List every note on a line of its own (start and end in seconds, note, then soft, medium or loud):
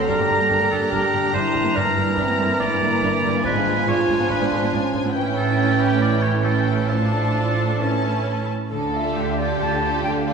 0.00 0.28 D4 soft
0.00 0.92 A4 medium
0.07 0.12 G1 medium
0.07 0.12 G2 medium
0.07 1.75 G2 soft
0.07 1.49 G3 medium
0.07 0.12 D4 medium
0.07 3.14 D4 medium
0.07 1.75 G4 medium
0.07 0.70 A#4 medium
0.07 3.40 A#5 medium
0.19 0.23 G2 soft
0.19 0.23 A#3 soft
0.29 0.33 G1 soft
0.29 0.33 G2 soft
0.29 0.34 G3 soft
0.29 0.70 D4 soft
0.40 0.44 G2 soft
0.40 0.44 A#3 soft
0.50 0.54 G1 medium
0.50 0.54 G2 medium
0.50 0.55 D4 soft
0.50 1.32 A#4 soft
0.60 0.65 G2 soft
0.60 0.65 A#3 soft
0.70 0.75 G1 soft
0.70 0.75 G2 soft
0.70 0.74 G3 soft
0.70 1.11 D4 soft
0.70 0.80 A4 medium
0.81 0.86 G2 soft
0.81 0.86 A#3 soft
0.91 0.96 G1 medium
0.91 0.96 G2 medium
0.91 1.77 D3 soft
0.91 0.96 D4 medium
0.91 1.32 G4 medium
0.91 1.32 A#4 medium
1.01 1.06 G2 soft
1.01 1.05 A#3 soft
1.12 1.17 G1 soft
1.12 1.17 G2 soft
1.12 1.16 G3 soft
1.12 1.53 D4 soft
1.23 1.27 G2 soft
1.23 1.27 A#3 soft
1.33 1.38 G1 medium
1.33 1.37 G2 medium
1.33 1.37 D4 medium
1.33 1.76 E4 medium
1.33 2.16 A#4 soft
1.33 1.77 C5 medium
1.53 1.59 G1 soft
1.53 1.58 G2 soft
1.53 1.58 G3 medium
1.53 1.96 D4 soft
1.64 1.69 G2 soft
1.64 1.68 A#3 soft
1.74 1.80 G1 medium
1.74 1.79 G2 medium
1.74 2.59 G2 medium
1.74 3.40 E3 medium
1.74 1.78 D4 medium
1.74 2.07 D4 medium
1.74 3.40 E4 medium
1.74 2.59 A#4 medium
1.85 1.90 G2 soft
1.85 1.89 A#3 soft
1.96 2.01 G1 soft
1.96 2.00 G2 soft
1.96 2.00 G3 soft
1.96 2.37 D4 soft
2.06 2.10 G2 soft
2.06 2.11 A#3 soft
2.16 2.22 G1 medium
2.16 2.21 G2 medium
2.16 2.60 C4 medium
2.16 2.21 D4 soft
2.16 3.02 A#4 soft
2.27 2.31 G2 soft
2.27 2.32 A#3 soft
2.37 2.43 G1 soft
2.37 2.42 G2 soft
2.37 2.43 G3 soft
2.37 3.22 D4 soft
2.48 2.53 G2 soft
2.48 2.53 A#3 soft
2.59 2.64 G1 medium
2.59 2.64 G2 medium
2.59 3.46 G2 soft
2.59 3.44 A#3 medium
2.59 2.64 D4 medium
2.59 3.42 D5 medium
2.70 2.74 G2 soft
2.70 2.75 A#3 soft
2.80 2.85 G1 soft
2.80 2.85 G2 soft
2.80 3.46 D3 soft
2.80 2.86 G3 soft
2.91 2.95 G2 soft
2.91 2.97 A#3 soft
3.02 3.06 G1 medium
3.02 3.06 G2 medium
3.02 3.07 D4 medium
3.02 3.46 A#4 soft
3.23 3.27 G1 soft
3.23 3.27 G2 soft
3.23 3.29 G3 soft
3.23 3.65 D4 soft
3.33 3.38 G2 soft
3.33 3.39 A#3 soft
3.43 3.48 G#1 medium
3.43 3.48 G#2 medium
3.43 5.16 G#2 medium
3.43 5.16 F3 medium
3.43 3.86 G#3 medium
3.43 5.11 D4 medium
3.43 3.50 D4 medium
3.43 5.14 F4 medium
3.43 3.86 B4 medium
3.43 5.10 G#5 medium
3.55 3.59 G#2 soft
3.55 3.60 B3 soft
3.65 3.69 G#1 soft
3.65 3.69 G#2 soft
3.65 3.71 G#3 soft
3.65 4.08 D4 soft
3.76 3.80 G#2 soft
3.76 3.82 B3 soft
3.86 3.91 G#1 medium
3.86 3.91 G#2 medium
3.86 3.93 D4 soft
3.86 4.28 F4 medium
3.86 4.71 G#4 soft
3.86 4.29 C#5 medium
3.98 4.02 G#2 soft
3.98 4.02 B3 soft
4.08 4.13 G#1 soft
4.08 4.13 G#2 soft
4.08 4.14 G#3 soft
4.08 4.50 D4 soft
4.20 4.24 G#2 soft
4.20 4.24 B3 soft
4.30 4.34 G#1 medium
4.30 4.34 G#2 medium
4.30 5.17 G#3 soft
4.30 4.34 D4 medium
4.30 4.71 D4 medium
4.30 4.71 B4 medium
4.41 4.45 G#2 soft
4.41 4.45 B3 soft
4.51 4.55 G#1 soft
4.51 4.55 G#2 soft
4.51 4.56 G#3 soft
4.51 4.92 D4 soft
4.62 4.66 G#2 soft
4.62 4.67 B3 soft
4.72 4.76 G#1 medium
4.72 4.77 G#2 medium
4.72 5.57 C#4 medium
4.72 4.77 D4 medium
4.72 5.16 G#4 soft
4.93 4.98 G#1 soft
4.93 4.98 G#2 soft
4.93 4.98 G#3 soft
4.93 5.16 D4 soft
5.04 5.09 G#2 soft
5.04 5.09 B3 soft
5.14 8.47 A1 medium
5.14 6.88 A2 soft
5.14 8.47 A2 medium
5.14 6.89 E3 medium
5.14 6.86 C#4 medium
5.14 6.40 C#4 medium
5.14 6.40 E4 medium
5.14 6.39 G5 medium
5.37 5.78 C#4 soft
5.37 5.76 A4 medium
5.57 6.00 C#4 medium
5.57 6.43 G4 soft
5.79 6.20 C#4 soft
5.79 6.00 G4 medium
6.00 6.91 E3 soft
6.00 6.44 A3 soft
6.00 6.24 D5 medium
6.21 6.65 C#4 soft
6.21 6.44 C#5 medium
6.43 6.88 C#4 soft
6.43 6.89 C#4 soft
6.43 6.88 E4 soft
6.43 6.91 G4 soft
6.43 6.88 A4 medium
6.43 6.88 G5 soft
6.66 6.91 C#4 soft
6.89 7.80 A2 soft
6.89 7.82 F3 soft
6.89 8.46 A3 soft
6.89 7.83 D4 soft
6.89 7.81 D4 soft
6.89 7.81 F4 soft
6.89 8.45 A4 medium
6.89 7.79 A5 soft
7.12 7.57 D4 soft
7.35 8.25 A4 soft
7.58 7.82 D4 soft
7.80 8.73 A2 soft
7.80 8.48 E3 soft
7.80 8.51 C#4 soft
7.80 8.48 C#4 soft
7.80 8.49 E4 soft
7.80 8.49 A5 soft
8.03 8.48 C#4 soft
8.49 8.73 C#4 soft
8.70 9.10 D2 medium
8.70 9.11 D3 medium
8.70 10.33 D3 soft
8.70 9.13 A4 medium
8.83 9.71 D4 soft
8.92 9.37 D4 soft
8.92 9.37 F4 soft
8.92 9.37 A4 soft
8.92 9.82 A4 soft
8.92 9.40 E5 medium
9.05 9.49 D5 soft
9.16 9.55 D2 medium
9.16 9.55 D3 medium
9.16 10.33 G4 medium
9.16 9.38 F5 soft
9.28 10.15 A5 soft
9.38 9.82 D4 soft
9.38 9.82 F4 soft
9.38 9.81 A4 soft
9.38 9.59 D5 medium
9.38 10.03 F5 soft
9.50 9.93 D5 soft
9.60 9.99 D2 medium
9.60 10.00 D3 medium
9.60 10.33 A3 soft
9.60 10.03 A5 medium
9.73 10.33 D4 soft
9.82 10.26 D4 soft
9.82 10.25 F4 soft
9.82 10.25 A4 soft
9.82 10.33 A4 soft
9.94 10.33 D5 soft
10.04 10.33 D2 medium
10.04 10.33 D3 medium
10.04 10.25 F5 medium
10.04 10.10 G5 medium
10.16 10.33 A5 soft
10.26 10.33 D4 soft
10.26 10.33 F4 soft
10.26 10.33 A4 soft
10.26 10.33 F5 soft
10.26 10.33 F5 medium